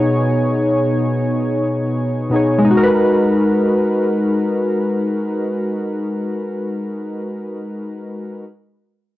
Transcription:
synth keys
Already playing: B2 B3 D#4 G#4 C#5
2.30 B2 B3 D#4
2.34 G#4 C#5
2.58 G#3
2.65 D#4
2.71 F#4
2.77 A#4
2.83 B4

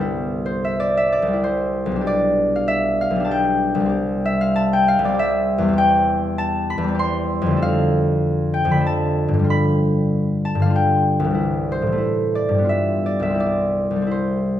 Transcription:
harp
Already playing: C2 G2 D3 G3 B3 D4 G4 B4 D5
0.01 E4
0.46 C5
0.65 E5
0.80 D5
0.97 E5
1.12 D5
1.22 C2
1.27 G3
1.33 E4
1.44 C5
1.86 B1
1.91 G3
1.96 D4
2.01 G4
2.07 D5
2.56 F5
2.68 E5
3.01 F5
3.10 B1
3.16 G3
3.20 D4
3.25 G4 A5
3.31 G5
3.75 C2
3.80 G3
3.85 C4 G4
4.25 E5
4.41 F5
4.56 A5
4.73 G5
4.88 F5
4.99 C2
5.04 G3 D5
5.09 C4
5.14 G4
5.19 E5
5.58 E2
5.63 G3
5.69 C4
5.73 G4
5.78 G5
6.38 A5
6.70 B5
6.78 E2
6.84 G3
6.88 C4
6.95 G4
6.99 C6
7.42 F2
7.46 D3
7.51 A3
7.57 A4
7.62 F5
8.54 G5
8.65 F2
8.70 D3 B5
8.77 A3 A4
8.86 A5
9.28 G2
9.34 D3
9.39 G3
9.44 F4
9.50 B5
10.45 A5
10.55 G2
10.60 D3 F5
10.66 G3
10.70 F4
10.76 G5
11.20 C2
11.25 E3
11.30 G3
11.35 E4
11.72 C5
11.82 A2
11.87 E3
11.92 A3
11.98 E4
12.35 D5
12.49 G2
12.54 G3
12.59 B3
12.64 F4
12.69 E5
13.06 D5
13.20 C2 E5
13.24 G3
13.30 C4
13.35 E4
13.40 D5
13.91 C2
13.96 G3
14.02 C4
14.07 E4
14.11 C5

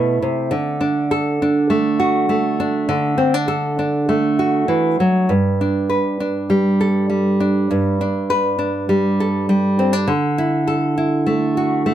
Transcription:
nylon-string guitar
Already playing: B2 A3 E4 C5
0.22 C3
0.51 D3
0.81 D4
1.11 A4
1.42 D4
1.70 A3
2.00 F#4
2.29 A3
2.60 D4
2.89 D3
3.18 C4
3.34 D4
3.48 A4
3.79 D4
4.09 A3
4.39 F#4
4.68 E3
5.00 F#3
5.29 G2
5.61 D4
5.90 B4
6.20 D4
6.50 G3
6.81 A4
7.10 G3
7.40 D4
7.71 G2
8.01 D4
8.30 B4
8.59 D4
8.89 G3
9.20 A4
9.49 G3
9.79 C4
9.93 D4
10.08 D3
10.38 E4
10.67 A4
10.98 E4
11.26 A3
11.57 F#4
11.86 A3

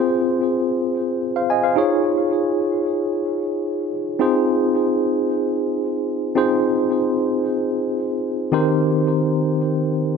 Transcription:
tine electric piano
Already playing: C4 F4 G#4 C5
1.36 C5 F5
1.50 D#5 G#5
1.64 C5 F5
1.76 D#4 F4 G#4 C#5
4.19 C4 D#4 F4 G#4 C5
6.35 C4 D#4 F4 G#4 C5
8.52 D#3 C4 D#4 G4 A#4 C5

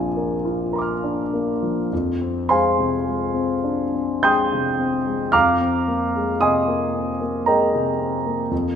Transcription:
grand piano
Already playing: A#1 A#2 F3 A#3 C4 D4 F4 G#5
0.17 A#4
0.45 F4
0.73 A#4 A#5 C6
0.79 D6 F6
1.04 D4
1.33 A#3
1.62 F3
1.93 F2
2.21 C4
2.49 G#3 C5 F5 G#5 C6
2.79 C3
3.06 G#3
3.34 C4
3.64 D4
3.94 C4
4.23 G#3 G5 C6 D#6 G6
4.53 C3
4.79 C4
5.06 G#3
5.32 F2 F5 A#5 D6 F6
5.61 C4
5.88 A#3
6.16 G#3
6.41 C3 D#5 G#5 C6 D#6
6.68 A#3
6.95 C4
7.21 A#3
7.46 G#3 A#4 D#5 G5 A#5
7.74 C3
8.00 C4
8.26 A#3
8.51 F2

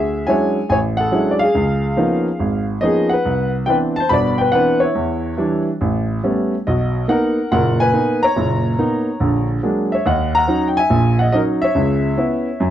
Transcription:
grand piano
Already playing: D2 G#4 E5
0.27 F#3 G#3 C#4 D4 E4 C#5 G#5
0.69 A1 C#5 G#5
0.97 A4 F#5
1.12 F#3 G#3 C#4 D4 E4
1.31 D5
1.39 F5
1.43 G#4
1.55 C#2
1.97 F3 A#3 B3 C#4 D#4
2.39 G#1
2.81 F3 A#3 B3 C#4 D#4 D#5
2.85 G#4
3.09 F#5
3.13 B4
3.25 C2
3.66 E3 B3 C4 D4 B4 G5
3.96 A5
4.00 C5
4.09 G1 B2 D5 B5
4.38 B4 G5
4.52 E3 B3 C4 D4 B4 F#5
4.80 E4 C#5
4.95 E2
5.38 E3 G3 D4
5.81 A1
6.23 G3 A3 B3 C#4
6.67 B1 F#4 D#5
7.08 A#3 B3 D#4 A#4 F#5
7.51 F#1 A#2 A#4 F#5
7.80 B4 G#5
7.93 A#3 B3 D#4
8.23 C#5 A#5
8.36 F#1 A#2
8.79 A#3 B3 D#4
9.20 A#1 D3
9.63 F#3 G#3 A#3 D4
9.92 C#5 E5
10.06 D#2 D#5 F#5
10.35 F#5 A#5
10.47 F#3 C#4 D#4
10.68 G5
10.77 E5 G#5
10.90 A#1 A#2
11.19 D#5 F#5
11.32 F#3 C#4 D#4 A#4 D#5
11.62 C#5 E5
11.75 C#2 C#3
12.17 B3 C#4 E4
12.60 F#2

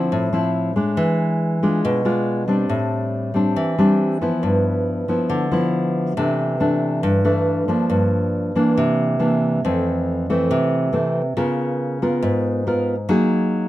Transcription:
nylon-string guitar
Already playing: F3 C4 E4
0.12 A2
0.33 F3 C4 E4
0.76 G#3 D4
0.97 E3
1.63 G#3 D4 F4
1.85 B2
2.05 G#3 D4 F4
2.48 G3 C4 D4
2.69 A2
3.34 G3 C4 D4
3.56 E3
3.78 G3 C4 D4
4.21 F3 B3 E4
4.43 G2
5.08 F3 B3 E4
5.30 D3
5.51 F3 B3 E4
6.17 C3 E3 A3 D4
6.60 E3 A3 D4
7.03 G2
7.25 E3 A3 D4
7.68 F3 A#3 D4
7.90 G2
8.55 E3 A#3 D4
8.78 C3
9.19 E3 A#3 D4
9.65 F2 E3 A3 C4
10.30 E3 A3 C4
10.51 C3
10.93 E3 A3 C4
11.37 C#3 B3 F4 A#4
12.02 B3 F4 A#4
12.22 G#2
12.67 B3 F4 A#4
13.09 F#3 A#3 D#4 G#4

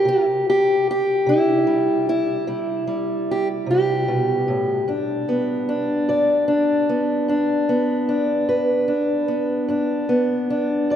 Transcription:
steel-string acoustic guitar
Already playing: G3 G4
0.05 C3 E4
0.50 G4
0.91 G4
1.27 C3 E4
1.67 G3
2.09 E4
2.47 C3 G3
2.87 G3
3.31 G4
3.66 C3
3.71 G4
4.08 B2
4.48 A2
4.88 G2 D4
5.29 B3
5.69 D4
6.09 G2 D5
6.48 D4
6.89 B3
7.28 G2 D4
7.69 B3
8.09 D4
8.49 G2 B4
8.88 D4
9.28 B3
9.68 G2 D4
10.09 B3
10.50 D4
10.90 G2 D5

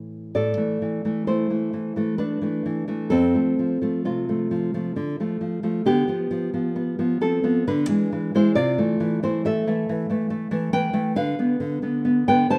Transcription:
nylon-string guitar
Already playing: A2 E3
0.35 A2 A4 D5
0.57 E3 A3
0.82 E3
1.05 E3 A3
1.27 A3 E4 C5
1.50 E3 A3
1.73 E3
1.96 E3 A3
2.18 A3 D4 B4
2.42 E3 A3
2.66 E3
2.88 E3 A3
3.10 F2 C4 A4
3.34 F3 A3
3.59 F3
3.82 F3 A3
4.05 C3 A3 F4
4.29 F3 A3
4.51 F3
4.74 F3 A3
4.96 D3
5.20 F3 A3
5.41 F3
5.63 F3 A3
5.86 D3 B3 G4
6.08 F3 B3
6.31 F3
6.54 F3 B3
6.76 B3
6.99 F3 B3
7.21 F3 C4 A4
7.44 F3 B3
7.67 D3 D4 B4
7.88 E3 G#3
8.12 E3
8.35 E3 G#3 E4 C5
8.55 C3 F4 D5
8.78 E3 A3
9.00 E3
9.23 E3 A3 E4 C5
9.45 A3 A4 E5
9.67 E3 A3
9.89 E3
10.10 E3 A3
10.30 A3
10.51 E3 A3
10.73 E3 B4 G5
10.93 E3 A3
11.16 D3 B4 F5
11.39 D3 B3
11.60 D3
11.82 D3 B3
12.05 B3
12.28 D3 B3 B4 G5
12.50 D3 C5 A5

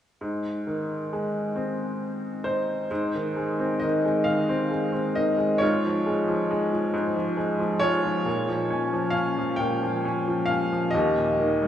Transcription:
upright piano
0.21 G#2
0.67 D#3
1.13 G#3
1.56 C4
2.44 D#4 C5
2.91 G#2
3.15 D#3
3.36 G#3
3.59 C4
3.80 D#3 D#5
4.05 G#3
4.24 D#3 F5
4.49 C4
4.71 G#3
4.93 C4
5.15 D#3 D#5
5.38 G#3
5.58 G#2 F4 C#5
5.85 F3
6.06 G#3
6.28 F3
6.51 G#3
6.73 F3
6.94 G#2
7.16 F3
7.37 G#3
7.59 F3
7.80 G#3 F4 C#5
8.03 F3
8.25 A#2
8.48 F3
8.71 C#4
8.93 F3
9.10 C#4 F5
9.38 F3
9.56 A#2 G5
9.82 F3
10.05 C#4
10.28 F3
10.46 F5
10.51 C#4
10.72 F3
10.91 D#2 G4 D#5
11.17 A#2
11.40 D#3
11.62 G3

